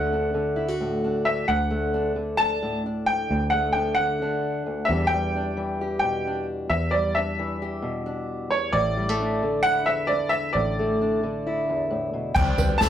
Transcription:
Already playing: fingered electric bass D2, steel-string acoustic guitar D2 D3 A3 D4 F#4, upright piano F#5
0.13 steel-string acoustic guitar D4
0.34 steel-string acoustic guitar D3
0.56 steel-string acoustic guitar E4
0.68 steel-string acoustic guitar F#4
0.80 steel-string acoustic guitar A2
1.04 steel-string acoustic guitar D4
1.25 upright piano E5
1.48 fingered electric bass D2, steel-string acoustic guitar D2, upright piano F#5
1.70 steel-string acoustic guitar A3
1.94 steel-string acoustic guitar D4
2.16 steel-string acoustic guitar D3
2.37 steel-string acoustic guitar D4, upright piano A5
2.63 steel-string acoustic guitar A2
2.86 steel-string acoustic guitar D4
3.06 upright piano G5
3.30 fingered electric bass D2, steel-string acoustic guitar D2
3.50 steel-string acoustic guitar A3, upright piano F#5
3.73 steel-string acoustic guitar D4, upright piano G5
3.95 upright piano F#5
3.99 steel-string acoustic guitar D3
4.22 steel-string acoustic guitar D4
4.66 steel-string acoustic guitar D2
4.85 upright piano E5
4.89 fingered electric bass E2, steel-string acoustic guitar E2 E3 G3 D4 G4
5.07 upright piano G5
5.14 steel-string acoustic guitar G3
5.36 steel-string acoustic guitar D4
5.57 steel-string acoustic guitar E3
5.81 steel-string acoustic guitar G4
5.99 steel-string acoustic guitar B2, upright piano G5
6.27 steel-string acoustic guitar D4
6.70 fingered electric bass E2, steel-string acoustic guitar E2, upright piano E5
6.91 steel-string acoustic guitar G3, upright piano D5
7.15 steel-string acoustic guitar D4, upright piano E5
7.39 steel-string acoustic guitar E3
7.62 steel-string acoustic guitar G4
7.82 steel-string acoustic guitar B2
8.06 steel-string acoustic guitar D4
8.51 steel-string acoustic guitar E2, upright piano C#5
8.73 fingered electric bass A1, steel-string acoustic guitar A2, upright piano D5
8.97 steel-string acoustic guitar G3
9.09 steel-string acoustic guitar A3
9.20 steel-string acoustic guitar D4
9.43 steel-string acoustic guitar D3
9.63 steel-string acoustic guitar E4, upright piano F#5
9.86 steel-string acoustic guitar E2, upright piano E5
10.07 upright piano D5
10.12 steel-string acoustic guitar D4
10.29 upright piano E5
10.53 fingered electric bass A1, steel-string acoustic guitar A2, upright piano D5
10.79 steel-string acoustic guitar A3
11.02 steel-string acoustic guitar D4
11.23 steel-string acoustic guitar D3
11.47 steel-string acoustic guitar E4
11.69 steel-string acoustic guitar E2
11.91 steel-string acoustic guitar A2
12.13 steel-string acoustic guitar B2
12.35 fingered electric bass C2, steel-string acoustic guitar C3 G3 C4 D4 G4, upright piano G5, kick, floor tom, crash
12.58 fingered electric bass C2, five-string banjo B4, floor tom, tambourine
12.69 steel-string acoustic guitar C4 D4 G4
12.78 steel-string acoustic guitar C3 G3 C4 D4 G4, five-string banjo A4, upright piano A5, kick, snare, floor tom, tambourine

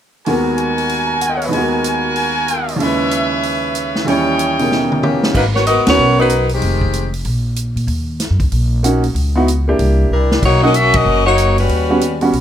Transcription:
0.25 grand piano D#2 D#3 G#3 B3 F#4 A#4, trumpet section F#4 A#4 G#5, open hi-hat
0.58 closed hi-hat
0.78 open hi-hat
0.89 open hi-hat
1.07 grand piano A#5
1.14 grand piano G#5
1.21 grand piano F#5, closed hi-hat
1.29 grand piano D#5
1.37 grand piano C#5
1.42 grand piano B4, open hi-hat
1.49 grand piano D#2 D#3, trumpet section F#4 A#4 G#5, open hi-hat
1.53 grand piano G#3 B3
1.57 grand piano F#4 A#4
1.84 closed hi-hat
2.16 open hi-hat
2.48 closed hi-hat
2.68 open hi-hat
2.76 grand piano D#2 C#3, trumpet section B4 C#5 E5, open hi-hat
2.81 grand piano G#3 E4
2.87 grand piano B4
3.11 closed hi-hat
3.43 open hi-hat
3.75 closed hi-hat
3.95 snare
4.05 grand piano D#2 E3 G3 C#4, trumpet section C#5 D#5 G5, open hi-hat
4.09 grand piano E4 C#5
4.39 closed hi-hat
4.59 grand piano B2 C#3 D#4 A#4, open hi-hat
4.72 snare
4.92 mid tom
5.03 saxophone section E3 A#3 C#4 G4, mid tom
5.23 snare
5.34 upright bass G#1, saxophone section F#3 A#3 D#4 B4, kick, crash
5.55 saxophone section B3 F#4 A#4 C#5, snare
5.66 saxophone section B3 F#4 A#4 D#5, closed hi-hat
5.77 upright bass C#2
5.87 upright bass D#2, grand piano B3 C#4 F#4 A#4, saxophone section B3 F#4 A#4 C#5, snare, ride
5.97 upright bass B1
6.19 saxophone section F#3 D#4 A#4 B4
6.29 closed hi-hat
6.49 saxophone section G#3, open hi-hat
6.54 saxophone section D#3 C4 G4
6.62 upright bass F1, open hi-hat
6.81 kick
6.93 closed hi-hat
7.14 open hi-hat
7.25 upright bass A#1, open hi-hat
7.56 closed hi-hat
7.76 upright bass A#2, open hi-hat
7.87 upright bass D#2, open hi-hat
8.20 snare, closed hi-hat
8.30 upright bass F#2
8.40 upright bass C#2, kick, open hi-hat
8.52 upright bass A#1, open hi-hat
8.83 grand piano A#3 C#4 D#4 F#4, closed hi-hat
9.04 open hi-hat
9.15 upright bass C#2, open hi-hat
9.36 grand piano B3 D#4 E4 F#4
9.48 closed hi-hat
9.68 grand piano A#3 D4 E4 G4
9.79 upright bass C2, open hi-hat
10.11 upright bass C2, saxophone section G3 D4 E4 A#4
10.31 snare
10.43 upright bass B1, saxophone section A#3 D#4 F#4 C#5, kick, crash
10.62 grand piano A#3 C#4 D#4 F#4, saxophone section C#4 F#4 A#4 D#5
10.74 saxophone section C#4 F#4 A#4 E5, closed hi-hat
10.94 saxophone section C#4 F#4 A#4 D#5, kick, ride
11.05 upright bass F#1
11.26 saxophone section A#3 D#4 F#4 C#5
11.38 closed hi-hat
11.58 saxophone section G3 C#4 F#4 B4, open hi-hat
11.69 upright bass D#2, open hi-hat
11.90 grand piano G3 B3 C#4 F#4
12.01 closed hi-hat
12.21 grand piano G3 B3 C#4 F#4, open hi-hat
12.32 upright bass B1, open hi-hat

